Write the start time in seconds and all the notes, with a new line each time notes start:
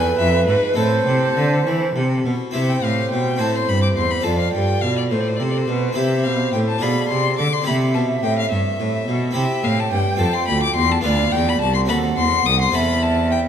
Already playing: E2 D4 E4 B4 G#5
0.19 F2 E5
0.47 G#2 B4
0.74 A2 C4 E4 A4
0.78 A2 C5
1.06 C3
1.36 D3
1.65 E3
1.96 C3
2.25 B2
2.51 C3 C4 E4 G4 E5
2.56 C5
2.70 G5
2.83 A2 F5
3.11 B2 G5
3.36 C4 E4 C5
3.40 A2 A5
3.56 C6
3.68 G2 B5
3.82 D6
3.96 E2 C6
4.11 B5
4.21 C4 F4 A4 A5
4.25 F2 D5
4.40 F5
4.53 G2 G5
4.81 B2 F5
4.97 D5
5.10 A2 C5
5.20 D5
5.28 C5
5.36 C3 A4 D5
5.40 C3 C5
5.51 D5
5.58 C5
5.68 B2 B4
5.93 C4 E4 G4 C5 E5
5.97 C3
6.24 B2 F5
6.52 A2 G5
6.68 A5
6.78 B2 D4 F4 G#4 D5 B5
6.82 B2
7.09 C3 C6
7.39 D3 D6
7.53 C6
7.62 C4 E4 G4
7.66 C3 E5 B5
7.94 B2 A5
8.23 A2 G5
8.39 F5
8.51 G2 E5
8.80 A2
9.08 B2
9.31 C4 E4 G4
9.35 C3 E5 G5
9.63 A2 F5
9.80 A5
9.92 G2 G5
10.16 F2 C4 F4 A4
10.21 F2 A5
10.34 C6
10.48 D2 B5
10.63 D6
10.76 E2 C6
10.92 A5
11.01 D2 B3 F4 B4 D5 F5
11.06 D2
11.32 E2 G5
11.49 B5
11.61 C2 A5
11.74 C6
11.85 C4 F#4 A4 B5
11.90 D#2 F#5
12.17 E2 C6
12.46 C2 D#6
12.61 C6
12.71 E2 C4 E4 A4 E5 B5
12.75 E2
13.03 A5
13.31 G5